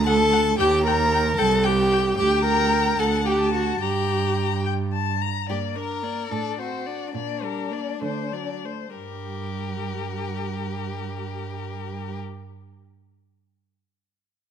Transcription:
0.00 0.50 D2 medium
0.06 0.59 A4 loud
0.06 0.14 F#5 medium
0.06 0.58 A5 medium
0.33 0.41 F#5 medium
0.59 1.29 D#2 medium
0.59 0.85 G4 loud
0.59 0.83 G5 medium
0.59 0.68 G5 medium
0.84 1.40 A#4 loud
0.84 0.95 G5 medium
0.84 1.36 A#5 medium
1.14 1.22 G5 medium
1.37 2.08 C2 medium
1.37 1.68 A4 medium
1.37 1.46 G5 medium
1.37 1.65 A5 medium
1.64 2.18 G4 loud
1.64 2.17 G5 medium
1.64 1.72 G5 medium
1.92 2.00 G5 medium
2.17 2.95 D2 medium
2.17 2.44 G4 loud
2.17 2.43 G5 medium
2.17 3.01 G5 medium
2.44 3.01 A#4 loud
2.44 3.00 A#5 medium
2.99 3.80 D2 medium
2.99 3.26 A4 medium
2.99 3.40 F#5 medium
2.99 3.27 A5 medium
3.26 3.53 G4 medium
3.26 3.52 G5 medium
3.41 3.84 A5 medium
3.53 3.81 F#4 medium
3.53 3.81 F#5 medium
3.81 5.25 G2 medium
3.81 4.64 G4 medium
3.81 4.64 G5 medium
3.81 4.60 A#5 medium
4.66 4.74 G5 soft
4.93 5.23 A5 medium
5.22 5.49 A#5 medium
5.49 6.19 G2 medium
5.49 5.78 A#3 soft
5.49 5.58 G4 medium
5.49 5.77 D5 soft
5.76 6.05 D4 soft
5.76 6.05 A#4 soft
5.76 6.33 A#4 medium
6.03 6.30 A#3 soft
6.03 6.31 D5 soft
6.31 7.02 A2 medium
6.31 6.61 D4 soft
6.31 6.59 A4 medium
6.31 6.60 D5 soft
6.59 6.89 C4 soft
6.59 7.14 F#4 soft
6.59 6.88 C5 soft
6.87 7.14 D4 soft
6.87 7.14 D5 soft
7.15 7.89 A#2 medium
7.15 7.44 A#3 soft
7.15 8.62 D4 medium
7.15 7.45 D5 soft
7.42 7.72 G3 soft
7.42 7.74 A#4 soft
7.71 8.00 A#3 soft
7.71 8.02 D5 soft
8.00 8.83 D3 medium
8.00 8.34 A3 soft
8.00 8.34 C5 soft
8.32 8.66 F#3 soft
8.32 8.66 D5 soft
8.64 8.96 A3 soft
8.64 8.96 C5 soft
8.96 12.17 G2 soft
8.96 12.17 G3 soft
8.96 12.17 G4 soft
8.96 12.17 A#4 soft

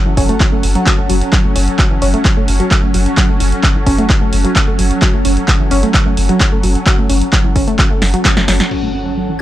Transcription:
0.00 8.70 F#3 medium
0.00 8.70 C#4 medium
0.00 8.71 A4 medium
0.00 8.71 F#5 medium
0.00 8.71 A5 medium
0.06 0.17 F#1 medium
0.06 0.09 E3 medium
0.17 0.29 F#1 loud
0.17 0.23 C#4 loud
0.17 kick medium
0.17 open hi-hat loud
0.29 0.35 A3 loud
0.29 closed hi-hat medium
0.40 0.49 F#3 medium
0.40 kick loud
0.40 clap loud
0.40 closed hi-hat medium
0.52 0.63 F#1 medium
0.52 0.58 A3 medium
0.63 0.75 F#1 loud
0.63 open hi-hat loud
0.75 0.81 F#3 loud
0.75 closed hi-hat medium
0.86 0.92 F#3 medium
0.86 kick loud
0.86 clap loud
0.86 closed hi-hat medium
0.98 1.09 F#1 medium
0.98 1.02 A3 medium
1.10 1.21 F#1 loud
1.10 1.13 F#3 medium
1.10 open hi-hat loud
1.21 closed hi-hat medium
1.33 1.41 F#3 loud
1.33 kick loud
1.33 clap loud
1.33 closed hi-hat medium
1.45 1.55 F#1 medium
1.45 1.50 A3 medium
1.56 1.67 F#1 loud
1.56 1.62 C#4 medium
1.56 open hi-hat loud
1.68 closed hi-hat medium
1.79 1.85 F#3 medium
1.79 kick loud
1.79 clap loud
1.79 closed hi-hat medium
1.91 2.01 F#1 medium
1.91 1.94 E3 medium
2.02 2.14 F#1 loud
2.02 2.08 C#4 loud
2.02 open hi-hat loud
2.14 2.19 A3 loud
2.14 closed hi-hat medium
2.25 2.34 F#3 medium
2.25 kick loud
2.25 clap loud
2.25 closed hi-hat medium
2.37 2.48 F#1 medium
2.37 2.42 A3 medium
2.48 2.60 F#1 loud
2.48 open hi-hat loud
2.60 2.65 F#3 loud
2.60 closed hi-hat medium
2.71 2.77 F#3 medium
2.71 kick loud
2.71 clap loud
2.71 closed hi-hat medium
2.83 2.94 F#1 medium
2.83 2.86 A3 medium
2.94 3.06 F#1 loud
2.94 2.98 F#3 medium
2.94 open hi-hat loud
3.06 closed hi-hat medium
3.17 3.26 F#3 loud
3.17 kick loud
3.17 clap loud
3.17 closed hi-hat medium
3.29 3.40 F#1 medium
3.29 3.35 A3 medium
3.40 3.52 F#1 loud
3.40 3.46 C#4 medium
3.40 open hi-hat loud
3.52 closed hi-hat medium
3.63 3.69 F#3 medium
3.63 kick loud
3.63 clap loud
3.63 closed hi-hat medium
3.75 3.86 F#1 medium
3.75 3.79 E3 medium
3.86 3.98 F#1 loud
3.86 3.92 C#4 loud
3.86 kick medium
3.86 open hi-hat loud
3.98 4.04 A3 loud
3.98 closed hi-hat medium
4.10 4.18 F#3 medium
4.10 kick loud
4.10 clap loud
4.10 closed hi-hat medium
4.22 4.32 F#1 medium
4.22 4.27 A3 medium
4.33 4.44 F#1 loud
4.33 open hi-hat loud
4.45 4.50 F#3 loud
4.45 closed hi-hat medium
4.56 4.62 F#3 medium
4.56 kick loud
4.56 clap loud
4.56 closed hi-hat medium
4.68 4.78 F#1 medium
4.68 4.71 A3 medium
4.79 4.91 F#1 loud
4.79 4.82 F#3 medium
4.79 open hi-hat loud
4.91 closed hi-hat medium
5.02 5.11 F#3 loud
5.02 kick loud
5.02 clap loud
5.02 closed hi-hat medium
5.14 5.24 F#1 medium
5.14 5.19 A3 medium
5.25 5.37 F#1 loud
5.25 5.31 C#4 medium
5.25 open hi-hat loud
5.37 closed hi-hat medium
5.48 5.54 F#3 medium
5.48 kick loud
5.48 clap loud
5.48 closed hi-hat medium
5.60 5.71 F#1 medium
5.60 5.63 E3 medium
5.71 5.83 F#1 loud
5.71 5.77 C#4 loud
5.71 open hi-hat loud
5.83 5.89 A3 loud
5.83 closed hi-hat medium
5.94 6.03 F#3 medium
5.94 kick loud
5.94 clap loud
5.94 closed hi-hat medium
6.06 6.17 F#1 medium
6.06 6.12 A3 medium
6.17 6.29 F#1 loud
6.17 open hi-hat loud
6.29 6.35 F#3 loud
6.29 closed hi-hat medium
6.40 6.46 F#3 medium
6.40 kick loud
6.40 clap loud
6.40 closed hi-hat medium
6.52 6.63 F#1 medium
6.52 6.56 A3 medium
6.63 6.75 F#1 loud
6.63 6.67 F#3 medium
6.63 open hi-hat loud
6.75 closed hi-hat medium
6.86 6.95 F#3 loud
6.86 kick loud
6.86 clap loud
6.86 closed hi-hat medium
6.98 7.09 F#1 medium
6.98 7.04 A3 medium
7.10 7.21 F#1 loud
7.10 7.15 C#4 medium
7.10 open hi-hat loud
7.21 closed hi-hat medium
7.33 7.39 F#3 medium
7.33 kick loud
7.33 clap loud
7.33 closed hi-hat medium
7.45 7.55 F#1 medium
7.45 7.48 E3 medium
7.56 7.67 F#1 loud
7.56 7.62 C#4 loud
7.56 kick medium
7.56 open hi-hat loud
7.68 7.73 A3 loud
7.68 closed hi-hat medium
7.79 7.88 F#3 medium
7.79 kick loud
7.79 clap loud
7.79 closed hi-hat medium
7.91 8.01 F#1 medium
7.91 7.96 A3 medium
8.02 8.14 F#1 loud
8.02 snare medium
8.02 open hi-hat medium
8.14 8.19 F#3 loud
8.14 closed hi-hat medium
8.25 kick loud
8.25 snare medium
8.25 clap loud
8.25 closed hi-hat medium
8.37 8.47 F#1 medium
8.37 8.40 A3 medium
8.37 snare medium
8.48 8.60 F#1 loud
8.48 8.52 F#3 medium
8.48 snare loud
8.48 open hi-hat loud
8.60 snare medium
8.60 closed hi-hat medium
8.71 9.42 F#3 medium
8.71 8.80 F#3 loud
8.71 9.42 C#4 medium
8.71 crash medium
8.71 impact medium
8.78 9.42 A4 medium
8.83 8.89 A3 medium
8.94 9.00 C#4 medium
9.17 9.23 F#3 medium
9.29 9.33 E3 medium

